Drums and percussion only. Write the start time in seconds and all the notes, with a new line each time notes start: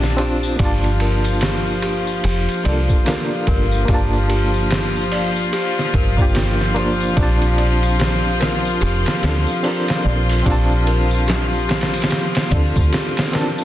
0.01 snare, tambourine
0.18 ride
0.43 tambourine
0.59 kick, ride, tambourine
0.83 ride, tambourine
1.00 ride
1.24 ride, tambourine
1.41 snare, ride, tambourine
1.67 tambourine
1.82 ride
2.07 tambourine
2.24 ride, tambourine
2.49 ride, tambourine
2.65 ride
2.89 kick, tambourine
3.06 snare, ride, tambourine
3.31 tambourine
3.47 kick, ride
3.71 tambourine
3.88 kick, ride, tambourine
4.13 tambourine
4.30 ride
4.54 tambourine
4.71 snare, ride, tambourine
4.96 tambourine
5.12 open hi-hat
5.36 tambourine
5.53 ride, tambourine
5.78 snare, tambourine
5.94 kick, ride
6.18 kick, tambourine
6.35 snare, ride, tambourine
6.59 snare, tambourine
6.76 ride
7.00 tambourine
7.17 kick, ride, tambourine
7.41 ride, tambourine
7.58 ride
7.83 ride, tambourine
7.99 snare, ride, tambourine
8.25 tambourine
8.41 snare, ride
8.65 tambourine
8.81 ride, tambourine
9.06 snare, ride, tambourine
9.23 snare, ride
9.47 tambourine
9.63 open hi-hat, tambourine
9.88 snare, ride, tambourine
10.29 open hi-hat, tambourine
10.46 kick, ride, tambourine
10.70 tambourine
10.87 ride
11.11 tambourine
11.28 snare, ride, tambourine
11.53 tambourine
11.69 snare, ride
11.81 snare, ride
11.94 ride, tambourine
12.02 snare, ride
12.10 snare, ride, tambourine
12.35 snare, ride, tambourine
12.51 kick, ride
12.76 kick, tambourine
12.92 snare, ride, tambourine
13.17 snare, ride, tambourine
13.33 snare, ride
13.58 tambourine